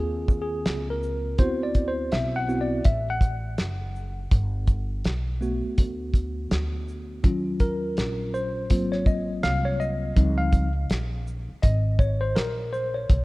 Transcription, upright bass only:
Already playing: D#2
0.66 C#2
1.39 D2
2.12 B1
2.85 A1
3.59 F#1
4.32 G1
5.05 B1
5.63 muted upright bass stroke
5.78 D2
6.51 D2
7.24 D#2
7.98 A#1
8.71 G#1
9.44 C2
10.17 C#2
10.90 A#1
11.49 muted upright bass stroke
11.64 G#1
12.37 A#1
13.10 B1

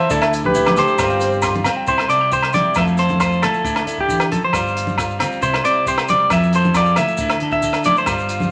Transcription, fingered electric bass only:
0.11 D2
0.99 G1
1.87 C2
2.09 C3
2.76 F2
3.64 D2
3.87 D3
4.53 G1
5.42 C2
5.65 C3
6.30 F2
7.18 D2
7.42 D3
8.07 G1

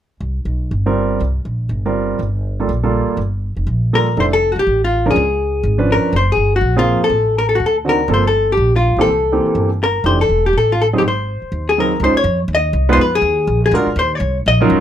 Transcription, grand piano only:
0.86 G3 C4 F4 A#4
1.85 G3 C4 F4 A#4
2.60 G3 A#3 F4 A4
2.83 G3 A#3 F4 A4
3.93 G3 A#3 F4 A4
4.17 G3 D4 E4 A4
5.06 F3 C#4 D4 A#4
5.78 F3 C#4 D4 B4
6.77 F3 A#3 C4 G#4
7.85 D#3 C4 D4 F#4
8.08 F3 A#3 C4 A4
8.98 E3 A#3 C4 G4
9.32 E3 A#3 C4 G4
10.05 E3 A3 D4 G4
10.93 F#3 C4 D#4 G#4
11.78 F#3 C4 D#4 G#4
12.03 G#3 C#4 D#4 F4 C5
12.89 G#3 B3 D#4 F4 B4
13.74 G#3 D4 F4 F#4 A#4
14.61 F#3 C#4 D#4 F4 A#4

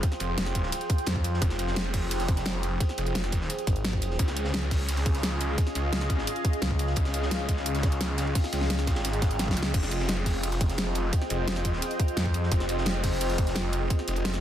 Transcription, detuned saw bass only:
0.20 F1
0.38 F1
1.42 F1
2.98 F1
4.19 C#2
5.75 C#2
5.93 C#2
6.97 C#2
8.53 C#2
8.70 C#2
9.05 G#1
9.57 C#2
9.74 F1
11.30 F1
12.52 F1
14.08 F1
14.25 F1

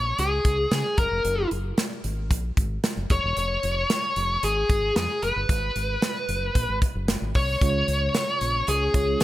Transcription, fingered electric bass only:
Already playing: A#1
0.18 C#2
0.45 C#2
0.71 C#3
0.98 F#1
1.11 F1
1.25 F#1
1.51 F#1
2.04 G#1
2.31 A#1
2.57 G#1
2.97 F#1
3.10 F1
3.24 E1
3.37 F1
3.63 F1
4.16 F1
4.43 G#1
4.70 G#1
4.96 F2
5.23 F1
5.36 G1
5.49 G#1
5.76 G#1
6.29 F#1
6.55 A#1
6.68 G#1
6.95 F#1
7.22 G#1
7.35 C2
7.61 C#2
7.88 C#2
8.41 A#1
8.68 C#2
8.94 C#2

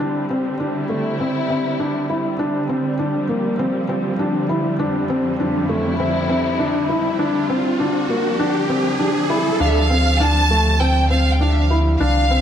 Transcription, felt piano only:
0.00 D4
0.30 C4
0.60 D4
0.89 A3
1.20 C4
1.50 C4
1.80 D4
2.09 E4
2.39 D4
2.69 C4
2.99 D4
3.29 A#3
3.59 C4
3.89 C4
4.19 D4
4.49 E4
4.79 D4
5.10 C4
5.40 D4
5.69 A3
6.00 C4
6.29 C4
6.59 D4
6.89 E4
7.19 D4
7.50 C4
7.80 D4
8.10 A#3
8.40 D4
8.70 C4
8.99 D4
9.30 E4
9.60 D4
9.90 C4
10.20 D4
10.51 A3
10.80 C4
11.10 C4
11.41 D4
11.71 E4
12.00 D4
12.31 C4

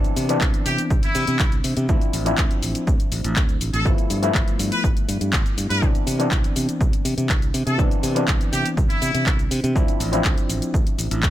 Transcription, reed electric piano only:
Already playing: E3 B3 C4 D4
0.28 E3 B3 C4 D4
1.89 F3 C4 D4 E4
2.25 F3 C4 D4 E4
3.85 F3 A3 B3 E4
4.22 F3 A3 B3 E4
5.82 E3 B3 C4 D4
6.18 E3 B3 C4 D4
7.78 E3 B3 C4 D4
8.15 E3 B3 C4 D4
9.75 F3 C4 D4 E4
10.12 F3 C4 D4 E4

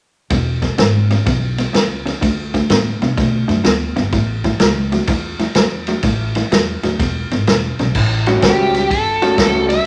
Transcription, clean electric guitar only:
0.30 E2 B2
0.62 E2 B2
0.78 E2 C#3
1.11 E2 C#3
1.26 E2 B2
1.58 E2 B2
1.73 E2 C#3
2.06 E2 C#3
2.21 D3 A3
2.54 D3 A3
2.70 D3 B3
3.02 D3 B3
3.18 D3 A3
3.48 D3 A3
3.64 D3 B3
3.96 D3 B3
4.13 A2 E3
4.44 A2 E3
4.60 A2 F#3
4.92 A2 F#3
5.09 A2 E3
5.40 A2 E3
5.56 A2 F#3
5.88 A2 F#3
6.03 A2 E3
6.36 A2 E3
6.52 A2 F#3
6.83 A2 F#3
6.99 E2 B2
7.32 E2 B2
7.48 E2 C#3
7.80 E2 C#3
8.27 A2 G3 C#4 F#4
8.42 A2 G3 C#4 F#4
9.22 A2 G3 C#4 F#4
9.39 A2 G3 C#4 F#4

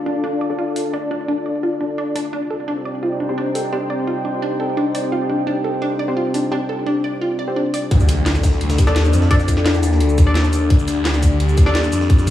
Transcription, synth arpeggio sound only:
0.06 D4
0.24 D4
0.41 D5
0.59 F4
0.76 D4
0.93 D4
1.11 D4
1.28 D4
1.46 D5
1.63 F4
1.81 D4
1.98 D4
2.16 D4
2.33 D4
2.50 A4
2.68 D4
2.85 D5
3.03 F4
3.20 D4
3.38 D4
3.55 A4
3.73 D4
3.90 D5
4.07 F4
4.25 D4
4.42 D4
4.60 A4
4.77 D4
4.95 D5
5.12 F4
5.30 D4
5.47 D4
5.64 A4
5.82 D4
5.99 D5
6.17 F4
6.34 D4
6.52 D4
6.69 A4
6.87 D4
7.04 D5
7.21 F4
7.39 D5
7.56 D4
7.74 D5

